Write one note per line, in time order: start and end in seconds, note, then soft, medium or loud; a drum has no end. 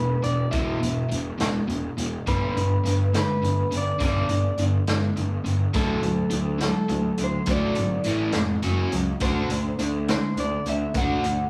0.00 0.15 E1 medium
0.00 0.21 E2 medium
0.00 0.21 B2 medium
0.00 0.23 B4 medium
0.22 0.43 E1 medium
0.22 0.50 E2 medium
0.22 0.50 B2 medium
0.22 0.51 D5 medium
0.22 closed hi-hat medium
0.51 0.72 E1 medium
0.51 0.79 E2 medium
0.51 0.80 B2 medium
0.51 0.80 E3 medium
0.51 1.14 E5 medium
0.51 kick medium
0.51 closed hi-hat medium
0.80 1.02 E1 medium
0.80 1.07 E2 medium
0.80 1.08 B2 medium
0.80 closed hi-hat medium
1.09 1.31 E1 medium
1.09 1.37 E2 medium
1.09 1.37 B2 medium
1.09 closed hi-hat medium
1.38 1.59 E1 medium
1.38 1.66 E2 medium
1.38 1.66 B2 medium
1.38 snare loud
1.38 closed hi-hat medium
1.68 1.88 E1 medium
1.68 1.95 E2 medium
1.68 1.95 B2 medium
1.68 closed hi-hat medium
1.98 2.17 E1 medium
1.98 2.24 E2 medium
1.98 2.25 B2 medium
1.98 closed hi-hat medium
2.26 2.46 G1 medium
2.26 2.54 G2 medium
2.26 2.54 D3 medium
2.26 2.55 G3 medium
2.26 3.17 B4 medium
2.26 kick medium
2.26 closed hi-hat medium
2.56 2.75 G1 medium
2.56 2.82 G2 medium
2.56 2.83 D3 medium
2.56 closed hi-hat medium
2.84 3.24 G1 medium
2.84 3.11 G2 medium
2.84 3.11 D3 medium
2.84 closed hi-hat medium
3.14 3.40 G2 medium
3.14 3.41 D3 medium
3.14 3.76 B4 medium
3.14 snare medium
3.14 closed hi-hat medium
3.43 3.62 G1 medium
3.43 3.69 G2 medium
3.43 3.69 D3 medium
3.43 closed hi-hat medium
3.72 3.91 G1 medium
3.72 3.98 G2 medium
3.72 3.98 D3 medium
3.72 closed hi-hat medium
3.77 4.02 D5 medium
3.99 4.20 G1 medium
3.99 4.27 G2 medium
3.99 4.28 D3 medium
3.99 4.28 G3 medium
3.99 kick loud
3.99 closed hi-hat medium
4.03 4.64 D5 medium
4.29 4.49 G1 medium
4.29 4.56 G2 medium
4.29 4.56 D3 medium
4.29 closed hi-hat medium
4.58 4.77 G1 medium
4.58 4.86 G2 medium
4.58 4.86 D3 medium
4.58 closed hi-hat medium
4.87 5.07 G1 medium
4.87 5.14 G2 medium
4.87 5.14 D3 medium
4.87 snare loud
4.87 closed hi-hat medium
5.17 5.37 G1 medium
5.17 5.43 G2 medium
5.17 5.43 D3 medium
5.17 closed hi-hat soft
5.45 5.65 G1 medium
5.45 5.72 G2 medium
5.45 5.72 D3 medium
5.45 closed hi-hat soft
5.73 5.94 D2 medium
5.73 6.01 D3 medium
5.73 6.01 F#3 medium
5.73 6.02 A3 medium
5.73 6.64 A4 medium
5.73 kick medium
5.73 closed hi-hat medium
6.02 6.23 D2 medium
6.02 6.29 D3 medium
6.02 6.29 F#3 medium
6.02 closed hi-hat medium
6.30 6.71 D2 medium
6.30 6.57 D3 medium
6.30 6.58 F#3 medium
6.30 closed hi-hat medium
6.59 6.86 D3 medium
6.59 6.87 F#3 medium
6.59 snare loud
6.59 closed hi-hat medium
6.66 7.23 A4 medium
6.89 7.09 D2 medium
6.89 7.16 D3 medium
6.89 7.16 F#3 medium
6.89 closed hi-hat medium
7.18 7.38 D2 medium
7.18 7.45 D3 medium
7.18 7.46 F#3 medium
7.18 closed hi-hat medium
7.24 7.51 C5 medium
7.46 7.66 D2 medium
7.46 7.75 D3 medium
7.46 7.76 F#3 medium
7.46 7.76 A3 loud
7.46 kick loud
7.46 closed hi-hat medium
7.51 8.11 D5 medium
7.75 7.97 G#1 medium
7.75 8.03 D3 medium
7.75 8.03 F#3 medium
7.75 closed hi-hat medium
8.04 8.26 A1 medium
8.04 8.33 A2 medium
8.04 8.34 E3 medium
8.04 8.34 A3 medium
8.04 closed hi-hat medium
8.33 8.54 F1 medium
8.33 8.62 A2 medium
8.33 8.62 E3 medium
8.33 snare loud
8.33 closed hi-hat medium
8.63 8.83 F#1 medium
8.63 8.91 F#3 medium
8.63 8.91 C#4 medium
8.63 8.91 F#4 medium
8.63 closed hi-hat medium
8.92 9.12 C#2 medium
8.92 9.19 F#3 medium
8.92 9.19 C#4 medium
8.92 closed hi-hat medium
9.20 9.40 D2 medium
9.20 9.49 D3 medium
9.20 9.50 D4 medium
9.20 9.50 F#4 medium
9.20 9.76 C5 medium
9.20 kick loud
9.20 closed hi-hat medium
9.50 9.69 D2 medium
9.50 9.77 D3 medium
9.50 9.77 D4 medium
9.50 closed hi-hat medium
9.79 10.17 D2 medium
9.79 10.06 D3 medium
9.79 10.06 D4 medium
9.79 closed hi-hat medium
10.09 10.35 D3 medium
10.09 10.35 D4 medium
10.09 10.39 C5 medium
10.09 snare loud
10.09 closed hi-hat medium
10.37 10.56 D2 medium
10.37 10.64 D3 medium
10.37 10.64 D4 medium
10.37 10.69 D5 medium
10.37 closed hi-hat medium
10.66 10.86 D2 medium
10.66 10.93 D3 medium
10.66 10.94 D4 medium
10.66 10.95 E5 medium
10.66 closed hi-hat medium
10.94 11.14 D2 medium
10.94 11.24 D3 medium
10.94 11.50 F#5 medium
10.94 kick medium
10.94 closed hi-hat medium
10.98 11.24 D4 medium
10.98 11.24 F#4 medium
11.24 11.43 D2 medium
11.24 11.50 D3 medium
11.24 11.50 D4 medium
11.24 closed hi-hat medium